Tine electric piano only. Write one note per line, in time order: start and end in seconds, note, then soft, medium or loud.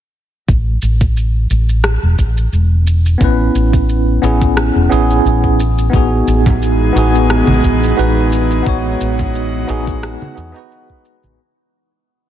3.18 4.18 B3 medium
3.18 4.19 C#4 medium
3.18 4.20 E4 medium
3.24 4.21 B4 medium
4.22 4.87 B3 medium
4.22 4.88 C#4 medium
4.22 4.88 E4 medium
4.22 4.88 G#4 medium
4.90 5.57 B3 medium
4.90 5.57 C#4 medium
4.90 5.58 E4 medium
4.90 5.58 G#4 medium
5.90 6.90 B3 medium
5.90 6.91 D#4 medium
5.90 6.92 F#4 medium
5.96 6.93 G#4 medium
6.93 7.93 B3 medium
6.93 7.94 D#4 medium
6.93 7.95 F#4 medium
6.98 7.96 G#4 medium
7.97 8.61 B3 medium
7.97 8.62 D#4 medium
7.97 8.63 F#4 medium
7.97 8.63 B4 medium
8.63 9.63 B3 medium
8.63 9.64 D#4 medium
8.63 9.65 F#4 medium
8.69 9.66 C#5 medium
9.67 10.32 B3 medium
9.67 10.33 D#4 medium
9.67 10.33 F#4 medium
9.67 10.34 G#4 loud
10.35 10.50 B3 medium
10.35 10.51 D#4 medium
10.35 10.51 F#4 medium
10.35 10.51 G#4 medium
10.52 11.34 B3 loud
10.52 11.35 D#4 medium
10.56 11.36 F#4 medium
10.56 11.37 B4 loud